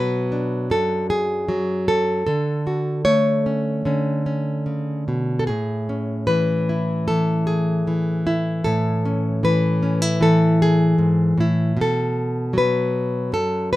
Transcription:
Already playing: B2 F#3 B4
0.32 D4
0.70 F#2 A4
1.10 G#4
1.49 F#3
1.88 A4
2.27 D3 A4
2.67 F#4
3.05 A3 C#5
3.46 C#4
3.85 D3 C#4
4.26 C#4
4.66 C#3
5.08 B2
5.39 A4
5.47 A2 G#4
5.89 C#4
6.27 E3 B4
6.69 E4
7.08 E3 A4
7.47 G#4
7.87 E3
8.27 E4
8.64 A2 A4
9.06 C#4
9.43 E3 B4
9.83 C#4
10.02 E4
10.21 E3 A4
10.62 G#4
10.98 G#2
11.38 A2 E4
11.77 B2
11.81 A4
12.53 F#3
12.58 B4
13.32 F#2 A4
13.73 B4

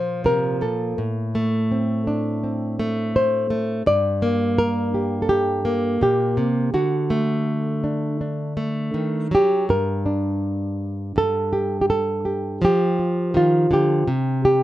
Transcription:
Already playing: A#2 F3 F4 C5
0.24 C3 A#4
0.61 A#2 A4
0.98 A2
1.35 A3
1.72 C4
2.07 D4
2.44 C4
2.79 A3
3.16 C5
3.50 A3
3.86 G2 D5
4.22 A#3
4.58 A#4
4.94 G4
5.22 A4
5.29 G4
5.65 A#3
6.01 A#2 G4
6.37 C3
6.74 D3 F#4
7.10 A3
7.84 D4
8.21 D4
8.57 A3
8.94 D#3
9.31 F#3 G4
9.69 G2 A#4
10.06 D4
11.16 G2 A4
11.53 G4
11.81 G4
11.90 A4
12.25 G4
12.62 F3 G4
12.99 F4
13.34 D#3 F4
13.71 D3 G4
14.08 C3
14.45 G4

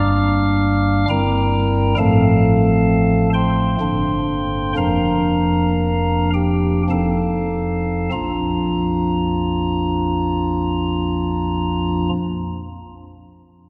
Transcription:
Already playing: G1 G2 G3 A#3 D4 F5 D6 F6
1.09 G1 G2 G3 C4 E4 A#4 G5 A#5
1.97 A1 A2 F3 A3 C4 A4 F5 A5
3.34 C5 G5 C6
3.80 G1 G2 D3 A#3 D4
4.76 F1 F2 F3 A#3 D4 A#4 F5 A#5
6.34 G4 G5
6.90 F1 F2 F3 C4 D#4 A4 F5 A5
8.12 A#1 F2 F3 A#3 D4 F4 A#5

